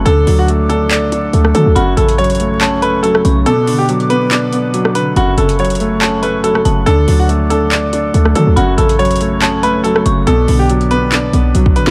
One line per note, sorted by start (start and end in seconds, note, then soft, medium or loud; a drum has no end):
0.00 3.42 A4 medium
0.00 3.42 F#5 medium
0.05 0.26 D2 loud
0.05 1.12 D3 loud
0.05 0.36 A4 loud
0.05 1.74 D5 medium
0.05 1.74 D6 medium
0.05 closed hi-hat medium
0.27 1.29 D2 loud
0.27 1.33 F#3 medium
0.27 open hi-hat medium
0.39 0.46 F#4 medium
0.48 1.32 A3 medium
0.48 closed hi-hat medium
0.69 1.11 D4 medium
0.69 1.51 A4 medium
0.69 closed hi-hat medium
0.91 1.76 D5 loud
0.91 clap loud
0.91 closed hi-hat medium
1.12 1.76 D4 medium
1.12 closed hi-hat medium
1.33 1.54 D2 loud
1.33 1.76 A3 medium
1.33 closed hi-hat medium
1.45 cross-stick loud
1.55 1.66 D3 loud
1.55 1.76 F#3 medium
1.55 1.71 A4 medium
1.55 closed hi-hat loud
1.66 1.76 D2 loud
1.75 1.96 F#1 loud
1.75 2.82 F#2 loud
1.75 1.92 F#4 medium
1.75 3.45 C#5 medium
1.75 2.57 B5 loud
1.75 3.44 C#6 medium
1.75 closed hi-hat medium
1.97 3.21 A1 loud
1.97 3.04 C#3 medium
1.97 2.13 A4 medium
1.97 closed hi-hat medium
2.08 closed hi-hat medium
2.18 3.02 F#3 medium
2.18 2.58 C#5 medium
2.18 closed hi-hat soft
2.24 closed hi-hat medium
2.30 closed hi-hat medium
2.35 closed hi-hat medium
2.40 2.81 A3 medium
2.40 closed hi-hat medium
2.61 3.46 C#4 loud
2.61 2.81 A5 medium
2.61 clap loud
2.61 closed hi-hat medium
2.82 3.46 A3 medium
2.82 2.99 B4 medium
2.82 3.22 B5 medium
2.82 closed hi-hat medium
3.03 3.46 F#3 medium
3.03 3.20 A4 medium
3.03 closed hi-hat medium
3.15 cross-stick loud
3.25 3.45 B1 loud
3.25 3.46 C#3 medium
3.25 3.45 C#6 medium
3.25 closed hi-hat loud
3.46 4.53 B2 loud
3.46 3.77 A4 loud
3.46 4.99 B4 medium
3.46 4.99 D5 medium
3.46 11.91 F#5 medium
3.46 4.99 D6 medium
3.46 closed hi-hat medium
3.67 4.74 D3 medium
3.67 open hi-hat loud
3.78 3.86 G4 medium
3.89 4.72 F#3 loud
3.89 closed hi-hat medium
4.00 closed hi-hat soft
4.10 4.51 B3 medium
4.10 4.91 B4 medium
4.10 closed hi-hat medium
4.31 5.16 D4 loud
4.31 clap loud
4.31 closed hi-hat medium
4.53 5.16 B3 medium
4.53 closed hi-hat medium
4.74 5.16 F#3 medium
4.74 closed hi-hat medium
4.85 cross-stick loud
4.95 5.16 D3 medium
4.95 5.12 B4 medium
4.95 closed hi-hat medium
5.16 5.37 F#1 loud
5.16 6.23 F#2 loud
5.16 5.33 F#4 medium
5.16 6.85 A4 medium
5.16 6.85 C#5 medium
5.16 5.98 B5 loud
5.16 6.85 C#6 medium
5.16 closed hi-hat medium
5.38 6.61 F#1 loud
5.38 6.44 C#3 medium
5.38 5.54 A4 medium
5.38 closed hi-hat medium
5.49 closed hi-hat medium
5.59 6.42 F#3 medium
5.59 5.99 C#5 medium
5.59 closed hi-hat soft
5.65 closed hi-hat medium
5.70 closed hi-hat medium
5.75 closed hi-hat medium
5.80 6.21 A3 medium
5.80 closed hi-hat medium
6.01 6.87 C#4 medium
6.01 6.22 A5 medium
6.01 clap loud
6.01 closed hi-hat medium
6.22 6.87 A3 medium
6.22 6.39 B4 medium
6.22 6.63 B5 medium
6.22 closed hi-hat medium
6.44 6.87 F#3 medium
6.44 6.60 A4 medium
6.44 closed hi-hat medium
6.55 cross-stick loud
6.65 6.86 F#1 loud
6.65 6.87 C#3 medium
6.65 6.85 A5 medium
6.65 closed hi-hat medium
6.86 7.07 D2 loud
6.86 7.93 D3 loud
6.86 7.17 A4 loud
6.86 8.55 A4 medium
6.86 8.55 D5 medium
6.86 8.55 D6 loud
6.86 closed hi-hat medium
7.08 8.10 D2 loud
7.08 8.14 F#3 medium
7.08 open hi-hat medium
7.19 7.27 F#4 medium
7.29 8.13 A3 medium
7.29 closed hi-hat medium
7.50 7.91 D4 medium
7.50 8.31 A4 medium
7.50 closed hi-hat medium
7.72 8.57 D5 loud
7.72 clap loud
7.72 closed hi-hat medium
7.93 8.57 D4 medium
7.93 closed hi-hat medium
8.14 8.35 D2 loud
8.14 8.57 A3 medium
8.14 closed hi-hat medium
8.25 cross-stick loud
8.35 8.46 D3 loud
8.35 8.57 F#3 medium
8.35 8.52 A4 medium
8.35 closed hi-hat medium
8.47 8.56 D2 loud
8.56 8.77 F#1 loud
8.56 9.63 F#2 loud
8.56 8.73 F#4 medium
8.56 10.25 A4 medium
8.56 10.25 C#5 medium
8.56 9.38 B5 loud
8.56 10.25 C#6 medium
8.56 closed hi-hat medium
8.78 10.02 A1 loud
8.78 9.84 C#3 medium
8.78 8.94 A4 medium
8.78 closed hi-hat medium
8.89 closed hi-hat medium
8.99 9.83 F#3 medium
8.99 9.39 C#5 medium
8.99 closed hi-hat soft
9.05 closed hi-hat medium
9.11 closed hi-hat medium
9.16 closed hi-hat medium
9.21 9.62 A3 medium
9.21 closed hi-hat medium
9.42 10.27 C#4 loud
9.42 9.62 A5 medium
9.42 clap loud
9.42 closed hi-hat medium
9.63 10.27 A3 medium
9.63 9.80 B4 medium
9.63 10.03 B5 medium
9.63 closed hi-hat medium
9.84 10.27 F#3 medium
9.84 10.00 A4 medium
9.84 closed hi-hat medium
9.96 cross-stick loud
10.06 10.26 F#1 loud
10.06 10.27 C#3 medium
10.06 10.26 C#6 medium
10.06 closed hi-hat medium
10.27 10.47 B1 loud
10.27 11.33 B2 loud
10.27 10.58 A4 loud
10.27 11.80 B4 medium
10.27 11.80 D5 medium
10.27 11.80 D6 medium
10.27 closed hi-hat medium
10.48 11.30 B1 loud
10.48 11.55 D3 medium
10.48 open hi-hat loud
10.59 10.67 G4 medium
10.70 11.53 F#3 loud
10.70 closed hi-hat medium
10.81 closed hi-hat soft
10.91 11.32 B3 medium
10.91 11.72 B4 loud
10.91 closed hi-hat medium
11.12 11.91 D4 loud
11.12 clap loud
11.12 closed hi-hat medium
11.33 11.54 B1 loud
11.33 11.91 B3 medium
11.33 closed hi-hat medium
11.55 11.77 B1 loud
11.55 11.91 F#3 medium
11.55 closed hi-hat medium
11.66 kick medium
11.76 11.91 A1 loud
11.76 11.91 D3 medium
11.76 11.91 B4 medium
11.76 closed hi-hat medium
11.87 snare loud